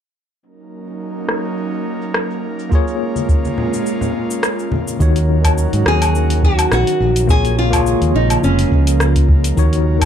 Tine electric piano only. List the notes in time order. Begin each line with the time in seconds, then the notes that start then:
2.69 A#3 F4 G#4
2.75 C#5
4.99 D#3 D#4 F#4 C#5
5.42 D#3 D#4 F#4
5.47 C#5
7.27 A#3 F4 G#4 C#5
7.70 A#3 F4 G#4
7.76 C#5
9.56 D#3 D#4 F#4 C#5
9.99 D#3 D#4